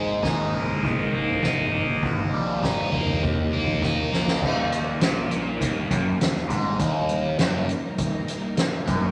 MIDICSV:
0, 0, Header, 1, 5, 480
1, 0, Start_track
1, 0, Key_signature, -3, "major"
1, 0, Tempo, 595829
1, 1635, Time_signature, 4, 2, 24, 8
1, 7341, End_track
2, 0, Start_track
2, 0, Title_t, "String machine"
2, 0, Program_c, 0, 50
2, 0, Note_on_c, 0, 58, 69
2, 0, Note_on_c, 0, 63, 68
2, 0, Note_on_c, 0, 68, 68
2, 0, Note_on_c, 0, 72, 85
2, 1606, Note_off_c, 0, 68, 0
2, 1617, Note_off_c, 0, 72, 0
2, 1644, Note_on_c, 0, 72, 74
2, 1651, Note_on_c, 0, 67, 64
2, 2557, Note_off_c, 0, 58, 0
2, 2566, Note_off_c, 0, 63, 0
2, 2591, Note_off_c, 0, 72, 0
2, 2593, Note_on_c, 0, 58, 72
2, 2593, Note_on_c, 0, 63, 57
2, 2595, Note_on_c, 0, 75, 73
2, 3545, Note_off_c, 0, 58, 0
2, 3545, Note_off_c, 0, 63, 0
2, 3545, Note_off_c, 0, 67, 0
2, 3546, Note_off_c, 0, 75, 0
2, 3565, Note_on_c, 0, 55, 68
2, 3567, Note_on_c, 0, 70, 83
2, 3569, Note_on_c, 0, 63, 64
2, 3570, Note_on_c, 0, 58, 69
2, 7341, Note_off_c, 0, 55, 0
2, 7341, Note_off_c, 0, 58, 0
2, 7341, Note_off_c, 0, 63, 0
2, 7341, Note_off_c, 0, 70, 0
2, 7341, End_track
3, 0, Start_track
3, 0, Title_t, "Overdriven electric guitar"
3, 0, Program_c, 1, 29
3, 0, Note_on_c, 1, 44, 70
3, 0, Note_on_c, 1, 56, 60
3, 192, Note_on_c, 1, 63, 87
3, 437, Note_on_c, 1, 58, 67
3, 677, Note_on_c, 1, 51, 62
3, 910, Note_off_c, 1, 44, 0
3, 917, Note_off_c, 1, 58, 0
3, 920, Note_on_c, 1, 58, 60
3, 1153, Note_off_c, 1, 56, 0
3, 1154, Note_off_c, 1, 63, 0
3, 1157, Note_on_c, 1, 63, 71
3, 1393, Note_off_c, 1, 58, 0
3, 1396, Note_on_c, 1, 58, 63
3, 1634, Note_on_c, 1, 39, 70
3, 1637, Note_off_c, 1, 51, 0
3, 1880, Note_on_c, 1, 55, 64
3, 2118, Note_off_c, 1, 63, 0
3, 2121, Note_on_c, 1, 63, 72
3, 2353, Note_off_c, 1, 58, 0
3, 2356, Note_on_c, 1, 58, 68
3, 2590, Note_off_c, 1, 39, 0
3, 2596, Note_off_c, 1, 58, 0
3, 2598, Note_off_c, 1, 55, 0
3, 2599, Note_off_c, 1, 63, 0
3, 2599, Note_on_c, 1, 39, 68
3, 2844, Note_on_c, 1, 58, 60
3, 3085, Note_on_c, 1, 63, 70
3, 3312, Note_off_c, 1, 58, 0
3, 3322, Note_on_c, 1, 58, 65
3, 3546, Note_off_c, 1, 39, 0
3, 3556, Note_on_c, 1, 39, 94
3, 3559, Note_off_c, 1, 58, 0
3, 3560, Note_off_c, 1, 63, 0
3, 4029, Note_off_c, 1, 39, 0
3, 4029, Note_on_c, 1, 46, 116
3, 4505, Note_off_c, 1, 46, 0
3, 4507, Note_on_c, 1, 39, 96
3, 4744, Note_off_c, 1, 39, 0
3, 4756, Note_on_c, 1, 42, 91
3, 4989, Note_off_c, 1, 42, 0
3, 4999, Note_on_c, 1, 39, 62
3, 5189, Note_off_c, 1, 39, 0
3, 5229, Note_on_c, 1, 44, 100
3, 5465, Note_off_c, 1, 44, 0
3, 5467, Note_on_c, 1, 39, 100
3, 5943, Note_off_c, 1, 39, 0
3, 5956, Note_on_c, 1, 42, 104
3, 6188, Note_off_c, 1, 42, 0
3, 7151, Note_on_c, 1, 42, 101
3, 7341, Note_off_c, 1, 42, 0
3, 7341, End_track
4, 0, Start_track
4, 0, Title_t, "Fingered electric bass"
4, 0, Program_c, 2, 33
4, 0, Note_on_c, 2, 32, 68
4, 175, Note_off_c, 2, 32, 0
4, 189, Note_on_c, 2, 39, 101
4, 412, Note_off_c, 2, 39, 0
4, 444, Note_on_c, 2, 32, 73
4, 660, Note_off_c, 2, 32, 0
4, 670, Note_on_c, 2, 32, 82
4, 892, Note_off_c, 2, 32, 0
4, 912, Note_on_c, 2, 32, 80
4, 1134, Note_off_c, 2, 32, 0
4, 1154, Note_on_c, 2, 32, 93
4, 1375, Note_off_c, 2, 32, 0
4, 1393, Note_on_c, 2, 32, 81
4, 1615, Note_off_c, 2, 32, 0
4, 1633, Note_on_c, 2, 31, 78
4, 1854, Note_off_c, 2, 31, 0
4, 1879, Note_on_c, 2, 34, 78
4, 2098, Note_off_c, 2, 34, 0
4, 2120, Note_on_c, 2, 31, 85
4, 2338, Note_off_c, 2, 31, 0
4, 2355, Note_on_c, 2, 37, 83
4, 2576, Note_off_c, 2, 37, 0
4, 2601, Note_on_c, 2, 27, 77
4, 2819, Note_off_c, 2, 27, 0
4, 2837, Note_on_c, 2, 37, 84
4, 3057, Note_off_c, 2, 37, 0
4, 3079, Note_on_c, 2, 27, 84
4, 3298, Note_off_c, 2, 27, 0
4, 3315, Note_on_c, 2, 34, 76
4, 3536, Note_off_c, 2, 34, 0
4, 3561, Note_on_c, 2, 27, 88
4, 4006, Note_off_c, 2, 27, 0
4, 4031, Note_on_c, 2, 34, 92
4, 4481, Note_off_c, 2, 34, 0
4, 4522, Note_on_c, 2, 27, 82
4, 4742, Note_off_c, 2, 27, 0
4, 4760, Note_on_c, 2, 30, 91
4, 4981, Note_off_c, 2, 30, 0
4, 4997, Note_on_c, 2, 27, 85
4, 5220, Note_off_c, 2, 27, 0
4, 5236, Note_on_c, 2, 32, 88
4, 5459, Note_off_c, 2, 32, 0
4, 5478, Note_on_c, 2, 27, 90
4, 5924, Note_off_c, 2, 27, 0
4, 5959, Note_on_c, 2, 30, 104
4, 6180, Note_off_c, 2, 30, 0
4, 7149, Note_on_c, 2, 30, 80
4, 7341, Note_off_c, 2, 30, 0
4, 7341, End_track
5, 0, Start_track
5, 0, Title_t, "Drums"
5, 186, Note_on_c, 9, 36, 103
5, 192, Note_on_c, 9, 38, 72
5, 267, Note_off_c, 9, 36, 0
5, 273, Note_off_c, 9, 38, 0
5, 432, Note_on_c, 9, 43, 78
5, 512, Note_off_c, 9, 43, 0
5, 553, Note_on_c, 9, 43, 79
5, 634, Note_off_c, 9, 43, 0
5, 670, Note_on_c, 9, 36, 109
5, 677, Note_on_c, 9, 43, 86
5, 751, Note_off_c, 9, 36, 0
5, 757, Note_off_c, 9, 43, 0
5, 1034, Note_on_c, 9, 43, 83
5, 1115, Note_off_c, 9, 43, 0
5, 1151, Note_on_c, 9, 36, 101
5, 1154, Note_on_c, 9, 38, 76
5, 1231, Note_off_c, 9, 36, 0
5, 1235, Note_off_c, 9, 38, 0
5, 1271, Note_on_c, 9, 43, 70
5, 1352, Note_off_c, 9, 43, 0
5, 1390, Note_on_c, 9, 43, 76
5, 1471, Note_off_c, 9, 43, 0
5, 1631, Note_on_c, 9, 43, 93
5, 1634, Note_on_c, 9, 36, 111
5, 1712, Note_off_c, 9, 43, 0
5, 1715, Note_off_c, 9, 36, 0
5, 2117, Note_on_c, 9, 36, 100
5, 2123, Note_on_c, 9, 38, 77
5, 2197, Note_off_c, 9, 36, 0
5, 2203, Note_off_c, 9, 38, 0
5, 2354, Note_on_c, 9, 43, 84
5, 2354, Note_on_c, 9, 47, 84
5, 2435, Note_off_c, 9, 43, 0
5, 2435, Note_off_c, 9, 47, 0
5, 2482, Note_on_c, 9, 43, 81
5, 2482, Note_on_c, 9, 47, 85
5, 2562, Note_off_c, 9, 43, 0
5, 2562, Note_off_c, 9, 47, 0
5, 2595, Note_on_c, 9, 43, 78
5, 2597, Note_on_c, 9, 36, 113
5, 2675, Note_off_c, 9, 43, 0
5, 2678, Note_off_c, 9, 36, 0
5, 2959, Note_on_c, 9, 43, 89
5, 2959, Note_on_c, 9, 47, 78
5, 3040, Note_off_c, 9, 43, 0
5, 3040, Note_off_c, 9, 47, 0
5, 3080, Note_on_c, 9, 36, 101
5, 3083, Note_on_c, 9, 38, 58
5, 3160, Note_off_c, 9, 36, 0
5, 3164, Note_off_c, 9, 38, 0
5, 3328, Note_on_c, 9, 38, 73
5, 3408, Note_off_c, 9, 38, 0
5, 3444, Note_on_c, 9, 38, 83
5, 3525, Note_off_c, 9, 38, 0
5, 3561, Note_on_c, 9, 36, 115
5, 3562, Note_on_c, 9, 49, 118
5, 3641, Note_off_c, 9, 36, 0
5, 3643, Note_off_c, 9, 49, 0
5, 3804, Note_on_c, 9, 42, 78
5, 3885, Note_off_c, 9, 42, 0
5, 4038, Note_on_c, 9, 42, 104
5, 4042, Note_on_c, 9, 38, 115
5, 4118, Note_off_c, 9, 42, 0
5, 4122, Note_off_c, 9, 38, 0
5, 4278, Note_on_c, 9, 42, 74
5, 4359, Note_off_c, 9, 42, 0
5, 4519, Note_on_c, 9, 36, 107
5, 4522, Note_on_c, 9, 42, 97
5, 4600, Note_off_c, 9, 36, 0
5, 4603, Note_off_c, 9, 42, 0
5, 4759, Note_on_c, 9, 36, 106
5, 4761, Note_on_c, 9, 42, 73
5, 4839, Note_off_c, 9, 36, 0
5, 4841, Note_off_c, 9, 42, 0
5, 5003, Note_on_c, 9, 42, 87
5, 5007, Note_on_c, 9, 38, 101
5, 5083, Note_off_c, 9, 42, 0
5, 5087, Note_off_c, 9, 38, 0
5, 5122, Note_on_c, 9, 38, 33
5, 5202, Note_off_c, 9, 38, 0
5, 5235, Note_on_c, 9, 36, 100
5, 5237, Note_on_c, 9, 42, 63
5, 5316, Note_off_c, 9, 36, 0
5, 5317, Note_off_c, 9, 42, 0
5, 5474, Note_on_c, 9, 36, 109
5, 5474, Note_on_c, 9, 42, 96
5, 5554, Note_off_c, 9, 42, 0
5, 5555, Note_off_c, 9, 36, 0
5, 5710, Note_on_c, 9, 42, 64
5, 5791, Note_off_c, 9, 42, 0
5, 5951, Note_on_c, 9, 42, 90
5, 5955, Note_on_c, 9, 38, 112
5, 6031, Note_off_c, 9, 42, 0
5, 6035, Note_off_c, 9, 38, 0
5, 6194, Note_on_c, 9, 42, 71
5, 6274, Note_off_c, 9, 42, 0
5, 6430, Note_on_c, 9, 42, 95
5, 6433, Note_on_c, 9, 36, 101
5, 6510, Note_off_c, 9, 42, 0
5, 6513, Note_off_c, 9, 36, 0
5, 6671, Note_on_c, 9, 42, 72
5, 6676, Note_on_c, 9, 38, 32
5, 6752, Note_off_c, 9, 42, 0
5, 6756, Note_off_c, 9, 38, 0
5, 6905, Note_on_c, 9, 42, 87
5, 6909, Note_on_c, 9, 38, 102
5, 6986, Note_off_c, 9, 42, 0
5, 6990, Note_off_c, 9, 38, 0
5, 7149, Note_on_c, 9, 36, 103
5, 7149, Note_on_c, 9, 42, 67
5, 7229, Note_off_c, 9, 36, 0
5, 7229, Note_off_c, 9, 42, 0
5, 7341, End_track
0, 0, End_of_file